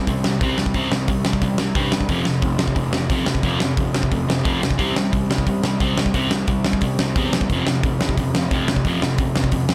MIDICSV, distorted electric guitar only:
0, 0, Header, 1, 2, 480
1, 0, Start_track
1, 0, Tempo, 337268
1, 1063, Time_signature, 4, 2, 24, 8
1, 13869, End_track
2, 0, Start_track
2, 0, Title_t, "Distorted electric guitar"
2, 0, Program_c, 0, 30
2, 116, Note_on_c, 0, 48, 61
2, 123, Note_on_c, 0, 55, 79
2, 326, Note_off_c, 0, 48, 0
2, 329, Note_off_c, 0, 55, 0
2, 348, Note_on_c, 0, 48, 65
2, 355, Note_on_c, 0, 55, 71
2, 562, Note_off_c, 0, 48, 0
2, 565, Note_off_c, 0, 55, 0
2, 601, Note_on_c, 0, 48, 77
2, 604, Note_on_c, 0, 55, 82
2, 612, Note_on_c, 0, 60, 90
2, 809, Note_off_c, 0, 48, 0
2, 815, Note_off_c, 0, 55, 0
2, 823, Note_off_c, 0, 60, 0
2, 826, Note_on_c, 0, 48, 60
2, 832, Note_on_c, 0, 55, 67
2, 1040, Note_off_c, 0, 48, 0
2, 1043, Note_off_c, 0, 55, 0
2, 1059, Note_on_c, 0, 48, 88
2, 1074, Note_on_c, 0, 55, 91
2, 1079, Note_on_c, 0, 60, 109
2, 1286, Note_off_c, 0, 48, 0
2, 1294, Note_off_c, 0, 55, 0
2, 1296, Note_off_c, 0, 60, 0
2, 1313, Note_on_c, 0, 48, 72
2, 1325, Note_on_c, 0, 55, 87
2, 1523, Note_off_c, 0, 48, 0
2, 1530, Note_off_c, 0, 55, 0
2, 1552, Note_on_c, 0, 48, 69
2, 1561, Note_on_c, 0, 55, 67
2, 1763, Note_off_c, 0, 48, 0
2, 1767, Note_off_c, 0, 55, 0
2, 1789, Note_on_c, 0, 48, 60
2, 1793, Note_on_c, 0, 55, 76
2, 2001, Note_off_c, 0, 48, 0
2, 2003, Note_off_c, 0, 55, 0
2, 2025, Note_on_c, 0, 48, 73
2, 2040, Note_on_c, 0, 55, 81
2, 2239, Note_off_c, 0, 48, 0
2, 2246, Note_off_c, 0, 55, 0
2, 2258, Note_on_c, 0, 48, 61
2, 2272, Note_on_c, 0, 55, 73
2, 2476, Note_off_c, 0, 48, 0
2, 2479, Note_off_c, 0, 55, 0
2, 2492, Note_on_c, 0, 48, 84
2, 2496, Note_on_c, 0, 55, 88
2, 2511, Note_on_c, 0, 60, 94
2, 2717, Note_off_c, 0, 48, 0
2, 2724, Note_off_c, 0, 55, 0
2, 2731, Note_off_c, 0, 60, 0
2, 2734, Note_on_c, 0, 48, 58
2, 2744, Note_on_c, 0, 55, 68
2, 2953, Note_off_c, 0, 48, 0
2, 2958, Note_off_c, 0, 55, 0
2, 2970, Note_on_c, 0, 41, 89
2, 2979, Note_on_c, 0, 48, 87
2, 2991, Note_on_c, 0, 53, 102
2, 3190, Note_off_c, 0, 41, 0
2, 3194, Note_off_c, 0, 48, 0
2, 3207, Note_on_c, 0, 41, 73
2, 3211, Note_off_c, 0, 53, 0
2, 3211, Note_on_c, 0, 48, 76
2, 3426, Note_off_c, 0, 41, 0
2, 3431, Note_off_c, 0, 48, 0
2, 3443, Note_on_c, 0, 41, 68
2, 3454, Note_on_c, 0, 48, 84
2, 3659, Note_off_c, 0, 41, 0
2, 3668, Note_off_c, 0, 48, 0
2, 3677, Note_on_c, 0, 41, 60
2, 3685, Note_on_c, 0, 48, 73
2, 3899, Note_off_c, 0, 41, 0
2, 3908, Note_off_c, 0, 48, 0
2, 3916, Note_on_c, 0, 41, 65
2, 3925, Note_on_c, 0, 48, 78
2, 4144, Note_off_c, 0, 41, 0
2, 4148, Note_off_c, 0, 48, 0
2, 4171, Note_on_c, 0, 41, 77
2, 4187, Note_on_c, 0, 48, 77
2, 4391, Note_off_c, 0, 41, 0
2, 4399, Note_off_c, 0, 48, 0
2, 4416, Note_on_c, 0, 41, 102
2, 4421, Note_on_c, 0, 48, 92
2, 4429, Note_on_c, 0, 53, 88
2, 4629, Note_off_c, 0, 41, 0
2, 4635, Note_off_c, 0, 48, 0
2, 4646, Note_on_c, 0, 41, 58
2, 4649, Note_off_c, 0, 53, 0
2, 4652, Note_on_c, 0, 48, 65
2, 4868, Note_off_c, 0, 41, 0
2, 4871, Note_off_c, 0, 48, 0
2, 4885, Note_on_c, 0, 41, 89
2, 4893, Note_on_c, 0, 48, 90
2, 4907, Note_on_c, 0, 53, 103
2, 5105, Note_off_c, 0, 41, 0
2, 5111, Note_off_c, 0, 48, 0
2, 5122, Note_on_c, 0, 41, 64
2, 5128, Note_off_c, 0, 53, 0
2, 5128, Note_on_c, 0, 48, 71
2, 5346, Note_off_c, 0, 41, 0
2, 5349, Note_off_c, 0, 48, 0
2, 5381, Note_on_c, 0, 41, 83
2, 5385, Note_on_c, 0, 48, 85
2, 5596, Note_off_c, 0, 41, 0
2, 5597, Note_off_c, 0, 48, 0
2, 5618, Note_on_c, 0, 41, 75
2, 5623, Note_on_c, 0, 48, 70
2, 5834, Note_off_c, 0, 41, 0
2, 5837, Note_off_c, 0, 48, 0
2, 5864, Note_on_c, 0, 41, 75
2, 5865, Note_on_c, 0, 48, 71
2, 6077, Note_off_c, 0, 41, 0
2, 6077, Note_off_c, 0, 48, 0
2, 6098, Note_on_c, 0, 41, 66
2, 6105, Note_on_c, 0, 48, 67
2, 6298, Note_off_c, 0, 41, 0
2, 6310, Note_off_c, 0, 48, 0
2, 6315, Note_on_c, 0, 41, 85
2, 6327, Note_on_c, 0, 48, 91
2, 6336, Note_on_c, 0, 53, 103
2, 6552, Note_off_c, 0, 41, 0
2, 6552, Note_off_c, 0, 48, 0
2, 6562, Note_off_c, 0, 53, 0
2, 6569, Note_on_c, 0, 48, 71
2, 6570, Note_on_c, 0, 41, 57
2, 6784, Note_off_c, 0, 48, 0
2, 6790, Note_off_c, 0, 41, 0
2, 6801, Note_on_c, 0, 48, 93
2, 6815, Note_on_c, 0, 55, 90
2, 6815, Note_on_c, 0, 60, 97
2, 7027, Note_off_c, 0, 48, 0
2, 7042, Note_off_c, 0, 55, 0
2, 7042, Note_off_c, 0, 60, 0
2, 7044, Note_on_c, 0, 48, 72
2, 7057, Note_on_c, 0, 55, 80
2, 7267, Note_off_c, 0, 48, 0
2, 7273, Note_off_c, 0, 55, 0
2, 7293, Note_on_c, 0, 48, 76
2, 7295, Note_on_c, 0, 55, 78
2, 7511, Note_off_c, 0, 48, 0
2, 7512, Note_off_c, 0, 55, 0
2, 7541, Note_on_c, 0, 48, 70
2, 7550, Note_on_c, 0, 55, 77
2, 7755, Note_off_c, 0, 48, 0
2, 7760, Note_off_c, 0, 55, 0
2, 7786, Note_on_c, 0, 48, 71
2, 7789, Note_on_c, 0, 55, 79
2, 7998, Note_off_c, 0, 48, 0
2, 7999, Note_off_c, 0, 55, 0
2, 8031, Note_on_c, 0, 48, 68
2, 8031, Note_on_c, 0, 55, 77
2, 8240, Note_off_c, 0, 48, 0
2, 8240, Note_off_c, 0, 55, 0
2, 8268, Note_on_c, 0, 48, 80
2, 8276, Note_on_c, 0, 55, 97
2, 8282, Note_on_c, 0, 60, 94
2, 8488, Note_off_c, 0, 48, 0
2, 8492, Note_off_c, 0, 55, 0
2, 8495, Note_off_c, 0, 60, 0
2, 8514, Note_on_c, 0, 48, 54
2, 8518, Note_on_c, 0, 55, 69
2, 8722, Note_off_c, 0, 48, 0
2, 8724, Note_off_c, 0, 55, 0
2, 8739, Note_on_c, 0, 48, 84
2, 8746, Note_on_c, 0, 55, 95
2, 8751, Note_on_c, 0, 60, 104
2, 8964, Note_off_c, 0, 48, 0
2, 8968, Note_off_c, 0, 55, 0
2, 8970, Note_off_c, 0, 60, 0
2, 8989, Note_on_c, 0, 48, 64
2, 9006, Note_on_c, 0, 55, 79
2, 9199, Note_off_c, 0, 48, 0
2, 9208, Note_off_c, 0, 55, 0
2, 9229, Note_on_c, 0, 48, 69
2, 9239, Note_on_c, 0, 55, 83
2, 9440, Note_off_c, 0, 48, 0
2, 9445, Note_off_c, 0, 55, 0
2, 9471, Note_on_c, 0, 48, 71
2, 9486, Note_on_c, 0, 55, 70
2, 9680, Note_off_c, 0, 48, 0
2, 9688, Note_off_c, 0, 55, 0
2, 9712, Note_on_c, 0, 48, 65
2, 9722, Note_on_c, 0, 55, 76
2, 9921, Note_off_c, 0, 48, 0
2, 9926, Note_off_c, 0, 55, 0
2, 9973, Note_on_c, 0, 48, 61
2, 9978, Note_on_c, 0, 55, 67
2, 10172, Note_off_c, 0, 48, 0
2, 10175, Note_off_c, 0, 55, 0
2, 10202, Note_on_c, 0, 48, 84
2, 10203, Note_on_c, 0, 55, 89
2, 10212, Note_on_c, 0, 60, 97
2, 10416, Note_off_c, 0, 48, 0
2, 10416, Note_off_c, 0, 55, 0
2, 10421, Note_off_c, 0, 60, 0
2, 10453, Note_on_c, 0, 48, 57
2, 10466, Note_on_c, 0, 55, 74
2, 10652, Note_off_c, 0, 48, 0
2, 10659, Note_off_c, 0, 55, 0
2, 10704, Note_on_c, 0, 41, 83
2, 10709, Note_on_c, 0, 48, 99
2, 10716, Note_on_c, 0, 53, 104
2, 10908, Note_off_c, 0, 41, 0
2, 10910, Note_off_c, 0, 48, 0
2, 10914, Note_off_c, 0, 53, 0
2, 10938, Note_on_c, 0, 41, 68
2, 10940, Note_on_c, 0, 48, 71
2, 11135, Note_off_c, 0, 41, 0
2, 11136, Note_off_c, 0, 48, 0
2, 11174, Note_on_c, 0, 41, 71
2, 11184, Note_on_c, 0, 48, 81
2, 11373, Note_off_c, 0, 41, 0
2, 11378, Note_off_c, 0, 48, 0
2, 11407, Note_on_c, 0, 41, 69
2, 11417, Note_on_c, 0, 48, 80
2, 11610, Note_off_c, 0, 41, 0
2, 11615, Note_off_c, 0, 48, 0
2, 11663, Note_on_c, 0, 41, 83
2, 11669, Note_on_c, 0, 48, 79
2, 11858, Note_off_c, 0, 41, 0
2, 11861, Note_off_c, 0, 48, 0
2, 11905, Note_on_c, 0, 41, 65
2, 11915, Note_on_c, 0, 48, 72
2, 12099, Note_off_c, 0, 41, 0
2, 12104, Note_off_c, 0, 48, 0
2, 12120, Note_on_c, 0, 41, 86
2, 12126, Note_on_c, 0, 48, 96
2, 12146, Note_on_c, 0, 53, 92
2, 12337, Note_off_c, 0, 41, 0
2, 12340, Note_off_c, 0, 48, 0
2, 12349, Note_off_c, 0, 53, 0
2, 12375, Note_on_c, 0, 41, 60
2, 12375, Note_on_c, 0, 48, 65
2, 12575, Note_off_c, 0, 41, 0
2, 12575, Note_off_c, 0, 48, 0
2, 12607, Note_on_c, 0, 41, 82
2, 12617, Note_on_c, 0, 48, 87
2, 12625, Note_on_c, 0, 53, 95
2, 12820, Note_off_c, 0, 41, 0
2, 12826, Note_off_c, 0, 48, 0
2, 12829, Note_off_c, 0, 53, 0
2, 12866, Note_on_c, 0, 41, 66
2, 12868, Note_on_c, 0, 48, 75
2, 13060, Note_off_c, 0, 41, 0
2, 13061, Note_off_c, 0, 48, 0
2, 13095, Note_on_c, 0, 41, 71
2, 13095, Note_on_c, 0, 48, 84
2, 13296, Note_off_c, 0, 41, 0
2, 13296, Note_off_c, 0, 48, 0
2, 13320, Note_on_c, 0, 41, 69
2, 13332, Note_on_c, 0, 48, 79
2, 13529, Note_off_c, 0, 41, 0
2, 13534, Note_off_c, 0, 48, 0
2, 13558, Note_on_c, 0, 41, 64
2, 13564, Note_on_c, 0, 48, 76
2, 13767, Note_off_c, 0, 41, 0
2, 13771, Note_off_c, 0, 48, 0
2, 13787, Note_on_c, 0, 41, 66
2, 13792, Note_on_c, 0, 48, 68
2, 13869, Note_off_c, 0, 41, 0
2, 13869, Note_off_c, 0, 48, 0
2, 13869, End_track
0, 0, End_of_file